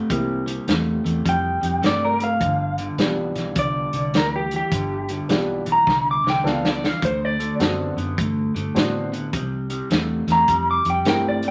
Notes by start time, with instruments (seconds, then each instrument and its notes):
0.10 fingered electric bass C2, clean electric guitar C3 G3, upright piano A#3 C4 E4 G4, kick, closed hi-hat
0.46 clean electric guitar C3 G3, closed hi-hat
0.67 fingered electric bass E2, clean electric guitar C3 A3, snare, closed hi-hat
1.04 fingered electric bass E2, clean electric guitar C3 A3, closed hi-hat
1.25 fingered electric bass F2, clean electric guitar C3 G3, kick, closed hi-hat
1.29 clean electric guitar G5
1.61 fingered electric bass F2, clean electric guitar C3 G3, closed hi-hat
1.81 fingered electric bass G2, clean electric guitar C3 A3, snare, closed hi-hat
1.86 clean electric guitar D5
2.05 clean electric guitar A#4
2.19 clean electric guitar C3 A3, closed hi-hat
2.24 clean electric guitar F5
2.40 fingered electric bass G1, clean electric guitar G2 D3, kick, closed hi-hat
2.78 clean electric guitar G2 D3, closed hi-hat
2.98 fingered electric bass B1, clean electric guitar G2 E3, upright piano B3 D4 F4 G4, snare, closed hi-hat
3.35 fingered electric bass B1, clean electric guitar G2 E3, snare, closed hi-hat
3.56 fingered electric bass C2, clean electric guitar G2 D3 D5, kick, closed hi-hat
3.93 fingered electric bass C2, clean electric guitar G2 D3, closed hi-hat
4.13 fingered electric bass D2, clean electric guitar G2 E3 A#4, snare, closed hi-hat
4.36 clean electric guitar G4
4.51 clean electric guitar G2 E3, closed hi-hat
4.56 clean electric guitar G4
4.71 fingered electric bass G1, clean electric guitar G2 D3, kick, closed hi-hat
5.09 clean electric guitar G2 D3, closed hi-hat
5.29 fingered electric bass B1, clean electric guitar G2 E3, upright piano B3 D4 F4 G4, snare, closed hi-hat
5.66 fingered electric bass B1, clean electric guitar G2 E3, closed hi-hat
5.72 clean electric guitar A#5
5.86 fingered electric bass C2, clean electric guitar G2 D3, kick, snare
6.11 clean electric guitar D6
6.24 fingered electric bass C2, clean electric guitar G2 D3, snare
6.30 clean electric guitar G5
6.44 fingered electric bass C#2, clean electric guitar G2 E3, upright piano B3 D4 F4 A4, snare
6.49 clean electric guitar F5
6.65 clean electric guitar D5, snare
6.82 clean electric guitar G2 E3, snare
6.86 clean electric guitar F5
7.02 fingered electric bass D2, clean electric guitar D3 A3 C5, kick, closed hi-hat
7.25 clean electric guitar D5
7.39 clean electric guitar D3 A3, closed hi-hat
7.59 fingered electric bass F#2, clean electric guitar D3 B3, upright piano C4 D4 F#4 A4, snare, closed hi-hat
7.96 fingered electric bass F#2, clean electric guitar D3 B3, closed hi-hat
8.17 fingered electric bass G2, clean electric guitar D3 A3, kick, closed hi-hat
8.55 fingered electric bass G2, clean electric guitar D3 A3, closed hi-hat
8.75 fingered electric bass A2, clean electric guitar D3 B3, upright piano C4 D4 F#4 C5, snare, closed hi-hat
9.12 clean electric guitar D3 B3, closed hi-hat
9.33 fingered electric bass C2, clean electric guitar C3 G3, kick, closed hi-hat
9.70 clean electric guitar C3 G3, closed hi-hat
9.90 fingered electric bass E2, clean electric guitar C3 A3, snare, closed hi-hat
10.27 fingered electric bass E2, clean electric guitar C3 A3, snare, closed hi-hat
10.32 clean electric guitar A#5
10.48 fingered electric bass F2, clean electric guitar C3 G3, kick, closed hi-hat
10.71 clean electric guitar D6
10.85 fingered electric bass F2, clean electric guitar C3 G3, closed hi-hat
10.90 clean electric guitar G5
11.05 fingered electric bass G2, clean electric guitar C3 A3 G5, upright piano C4 E4 G4 A#4, snare, closed hi-hat
11.28 clean electric guitar D5
11.43 clean electric guitar C3 A3, closed hi-hat